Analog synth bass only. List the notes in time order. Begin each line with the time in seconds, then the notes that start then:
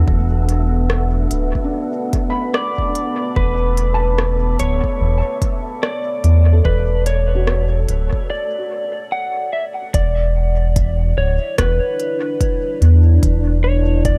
0.08 E1
1.31 D1
3.36 E1
4.59 D1
5.01 E1
6.24 E2
6.65 E1
7.88 D1
9.94 E1
11.17 D1
11.58 E1
12.82 E2
13.23 E1